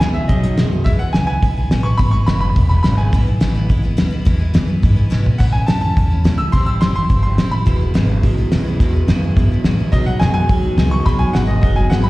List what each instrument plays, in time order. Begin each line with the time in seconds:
0.01 upright bass C#2, steel-string acoustic guitar E2 B2 E3 G#3 B3 G#4, clean electric guitar C#3, snare, closed hi-hat
0.14 steel-string acoustic guitar E3 G#3 B3 G#4, upright piano E5
0.28 upright bass B1, clean electric guitar B2, steel-string acoustic guitar F#3 B3 D#4, upright piano D#5, kick, closed hi-hat
0.32 steel-string acoustic guitar F#4
0.43 steel-string acoustic guitar B3 D#4 F#4, closed hi-hat
0.57 upright bass F#2, steel-string acoustic guitar B2 F#3 B3 D#4 F#4, clean electric guitar G#3, snare, closed hi-hat
0.72 steel-string acoustic guitar B3 D#4 F#4
0.84 steel-string acoustic guitar E2 B2 E3 G#3 B3 E4, upright bass E2, upright piano E5, kick, open hi-hat
0.99 steel-string acoustic guitar E3 G#3 B3 E4, upright piano F#5, muted upright bass stroke
1.13 upright bass C#2, steel-string acoustic guitar E2 B2 E3 G#3 B3 E4, upright piano G#5, snare, open hi-hat
1.27 steel-string acoustic guitar G#3 B3 E4, upright piano G#5
1.31 steel-string acoustic guitar E3
1.43 upright bass B1, steel-string acoustic guitar E3 G#3 B3 E4, kick, open hi-hat
1.57 steel-string acoustic guitar E3 G#3 B3 E4
1.71 upright bass A1, steel-string acoustic guitar E2 B2 E3 G#3 B3 E4, snare, open hi-hat
1.83 steel-string acoustic guitar G#3 B3 E4, upright piano C#6
1.88 steel-string acoustic guitar E3
1.97 upright bass G#1, steel-string acoustic guitar E2 B2 E3 G#3 B3 E4, upright piano B5, kick, open hi-hat
2.11 steel-string acoustic guitar E3 G#3 B3 E4, upright piano C#6
2.26 upright bass F#1, steel-string acoustic guitar E2 B2 E3 G#3 B3 E4, upright piano B5, snare, open hi-hat
2.40 steel-string acoustic guitar E3 G#3 B3 E4, upright piano B5
2.56 upright bass E1, steel-string acoustic guitar E3 G#3 B3 E4, kick, open hi-hat
2.69 steel-string acoustic guitar E3 G#3 B3 E4, upright piano B5
2.83 upright bass G#1, steel-string acoustic guitar E2 B2 E3 G#3 B3 E4, upright piano B5, snare, open hi-hat
2.98 steel-string acoustic guitar E3 G#3 B3 E4, upright piano G#5
3.13 upright bass B1, steel-string acoustic guitar E2 B2 E3 G#3 B3 E4, kick, open hi-hat
3.27 steel-string acoustic guitar E3 G#3 B3 E4
3.40 upright bass A1, steel-string acoustic guitar E2 B2 E3 G#3 B3 E4, snare, open hi-hat
3.55 steel-string acoustic guitar E3 G#3 B3 E4
3.69 upright bass G#1, steel-string acoustic guitar E3 G#3 B3 E4, kick, open hi-hat
3.82 steel-string acoustic guitar E3 G#3 B3 E4
3.97 upright bass D#2, steel-string acoustic guitar E2 B2 E3 G#3 B3 E4, snare, open hi-hat
4.11 steel-string acoustic guitar E3 G#3 B3 E4
4.25 steel-string acoustic guitar E2 B2 E3 G#3 B3 E4, upright bass E2, kick, open hi-hat
4.39 steel-string acoustic guitar E3 G#3 B3 E4
4.54 steel-string acoustic guitar E2 B2 E3 G#3 B3 E4, upright bass F#2, snare, open hi-hat
4.68 steel-string acoustic guitar E3 G#3 B3 E4
4.82 upright bass G#2, steel-string acoustic guitar E3 G#3 B3 E4, kick, open hi-hat
4.96 steel-string acoustic guitar E3 G#3 B3 E4
5.10 steel-string acoustic guitar E2 B2 E3 G#3 B3 E4, upright bass B2, snare
5.24 steel-string acoustic guitar E3 G#3 B3 E4, floor tom
5.38 steel-string acoustic guitar A2 E3 A3 C#4 E4, upright bass A2, upright piano F#5, kick, open hi-hat, splash
5.52 steel-string acoustic guitar A3 C#4 E4, upright piano G#5
5.66 upright bass F#2, steel-string acoustic guitar A2 E3 A3 C#4 E4, upright piano A5, snare, open hi-hat
5.81 steel-string acoustic guitar A3 C#4 E4, upright piano A5
5.97 upright bass E2, steel-string acoustic guitar E3 A3 C#4 E4, kick, open hi-hat
6.10 steel-string acoustic guitar A3 C#4 E4
6.24 upright bass C#2, steel-string acoustic guitar A2 E3 A3 C#4 E4, snare, open hi-hat
6.38 steel-string acoustic guitar A3 C#4 E4, upright piano E6
6.52 upright bass A1, steel-string acoustic guitar A2 E3 G3 C4 E4, upright piano C6, kick, open hi-hat
6.66 steel-string acoustic guitar G3 C4 E4, upright piano E6
6.81 upright bass F#1, steel-string acoustic guitar A2 E3 G3 C4 E4, upright piano C6, snare, open hi-hat
6.94 steel-string acoustic guitar G3 C4 E4, upright piano C6
7.09 upright bass G1, steel-string acoustic guitar E3 G3 C4 E4, kick, open hi-hat
7.23 steel-string acoustic guitar G3 C4 E4, upright piano C6
7.38 upright bass A1, steel-string acoustic guitar A2 E3 G3 C4 E4, snare, open hi-hat
7.51 steel-string acoustic guitar G3 C4 E4, upright piano B5
7.66 upright bass E1, steel-string acoustic guitar E2 B2 E3 G#3 B3 E4, kick, open hi-hat
7.81 steel-string acoustic guitar E3 G#3 B3 E4
7.94 upright bass G#1, steel-string acoustic guitar E2 B2 E3 G#3 B3 E4, clean electric guitar C#3, snare, open hi-hat
8.09 steel-string acoustic guitar E3 G#3 B3 E4
8.23 upright bass B1, clean electric guitar E2 B2, steel-string acoustic guitar E3 G#3 B3 E4, kick, open hi-hat
8.38 steel-string acoustic guitar E3 G#3 B3 E4
8.52 steel-string acoustic guitar E2 B2 E3 G#3 B3 E4, upright bass F#2, clean electric guitar C#3, snare, open hi-hat
8.66 steel-string acoustic guitar E3 G#3 B3 E4
8.80 upright bass E2, steel-string acoustic guitar E2 B2 E3 G#3 B3 E4, kick, open hi-hat
8.94 steel-string acoustic guitar E3 G#3 B3 E4
9.08 steel-string acoustic guitar E2 B2 E3 G#3 B3 E4, upright bass F#2, clean electric guitar C#3, snare, open hi-hat
9.22 steel-string acoustic guitar E3 G#3 B3 E4
9.36 clean electric guitar E2 B2, upright bass G#2, steel-string acoustic guitar E3 G#3 B3 E4, kick, open hi-hat
9.52 steel-string acoustic guitar E3 G#3 B3 E4
9.64 steel-string acoustic guitar E2 B2 E3 G#3 B3 E4, upright bass A2, clean electric guitar C#3, snare, open hi-hat
9.79 steel-string acoustic guitar E3 G#3 B3 E4
9.92 upright bass B2, steel-string acoustic guitar B2 F#3 B3 D#4 F#4, upright piano D#5, kick, open hi-hat
10.06 steel-string acoustic guitar B3 D#4 F#4, upright piano F#5
10.20 upright bass F#2, steel-string acoustic guitar B2 F#3 B3 D#4 F#4, clean electric guitar G#3, upright piano G#5, snare, open hi-hat
10.34 steel-string acoustic guitar D#4 F#4, upright piano G#5
10.38 steel-string acoustic guitar B3
10.49 upright bass D#2, clean electric guitar B2, steel-string acoustic guitar F#3 B3 D#4 F#4, kick, open hi-hat
10.63 steel-string acoustic guitar B3 D#4 F#4
10.77 upright bass C#2, steel-string acoustic guitar B2 F#3 B3 D#4 F#4, clean electric guitar G#3, snare, open hi-hat
10.91 steel-string acoustic guitar B3 D#4 F#4, upright piano C#6
11.06 upright bass B1, steel-string acoustic guitar B2 F#3 B3 D#4 F#4, upright piano B5, kick, open hi-hat
11.19 steel-string acoustic guitar D#4 F#4, upright piano G#5
11.23 steel-string acoustic guitar B3
11.33 upright bass G#1, steel-string acoustic guitar B2 F#3 B3 D#4 F#4, clean electric guitar G#3, upright piano F#5, snare, open hi-hat
11.47 steel-string acoustic guitar D#4 F#4, upright piano D#5
11.52 steel-string acoustic guitar B3
11.61 upright bass F#1, clean electric guitar B2, steel-string acoustic guitar F#3 B3, upright piano D#5, kick, open hi-hat
11.66 steel-string acoustic guitar D#4 F#4
11.76 steel-string acoustic guitar D#4 F#4, upright piano G#5
11.80 steel-string acoustic guitar B3
11.90 upright bass G#1, steel-string acoustic guitar B2 F#3 B3 D#4 F#4, clean electric guitar G#3, upright piano F#5, snare, open hi-hat
12.03 steel-string acoustic guitar F#4, upright piano B5